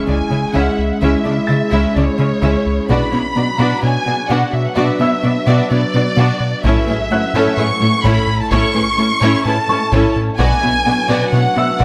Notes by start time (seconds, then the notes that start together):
Already playing: G#3 C#4 E4 G#4 C#6, impact
0.07 C#2 C#3 G#3 C#4 D4 D5 G#5
0.30 C#3 G#3 C#4 E4 E5
0.54 C#2 C#3 G#3 C#4 E4 E5 F#5
0.78 C#2 E5
0.91 F#5
1.01 C#2 C#3 G#3 C#4 E4 E5
1.24 C#3 G#3 C#4 D4 D5
1.47 C#3 G#3 C#4 E4 E5 A6
1.71 C#2 C#3 G#3 C#4 E4 E5
1.95 C#2 C#3 G#3 C#4 D4 C#5 D5
2.18 C#3 G#3 C#4 E4 E5
2.42 C#2 C#3 G#3 C#4 E4 E5
2.66 C#2
2.89 B2 F#3 B3 D4 F#4 B4 D5 B5, taiko
3.12 B2 B3 D4 E4 C#5
3.36 B2 B3 D4 F#4 D5
3.58 B2 B3 D4 F#4 D5
3.82 B2 B3 D4 E4 C#5 G#5
4.06 B2 B3 D4 F#4 D5
4.29 B2 B3 D4 F#4 D5 F#5
4.53 B2 E5
4.66 F#5
4.75 B2 B3 D4 F#4 D5 E5
5.00 B2 B3 D4 E4 C#5 E5 E6
5.23 B2 B3 D4 F#4 D5
5.47 B2 B3 D4 F#4 D5
5.71 B2 B3 D4 E4 C#5 D5
5.94 B2 B3 D4 F#4 D5
6.17 B2 B3 D4 F#4 D5
6.40 B2
6.64 A2 A3 C#4 E4 A4 C#5 E5, taiko
6.88 A2 A3 C#4 E4 G#4 B4
7.11 A2 A3 C#4 E4 A4 C#5 F#5 F#6
7.34 A2 C#4 E4 A4 C#5
7.57 A2 C#4 E4 G#4 B4 C#6
7.81 A2 A3 C#4 E4 A4 C#5
8.04 A2 C#4 E4 A4 C#5 B5, taiko
8.27 A2
8.41 A5
8.51 A2 C#4 E4 A4 C#5 C#6, taiko
8.75 A2 A3 C#4 E4 G#4 B4
8.98 A2 A3 C#4 E4 A4 C#5
9.21 A2 C#4 E4 A4 C#5
9.45 A2 C#4 E4 G#4 B4 A5
9.69 A2 A3 C#4 E4 A4 C#5 C#6
9.92 A2 C#4 E4 A4 C#5, taiko
10.16 A2
10.38 B2 F#3 B3 D4 F#4 B4 D5 G#5, taiko
10.62 B2 B3 E4 C#5
10.85 B2 B3 F#4 D5
11.08 B2 B3 F#4 D5
11.32 B2 B3 E4 C#5 F#5
11.55 B2 B3 F#4 D5 E5 E6
11.78 B2 B3 F#4 D5, taiko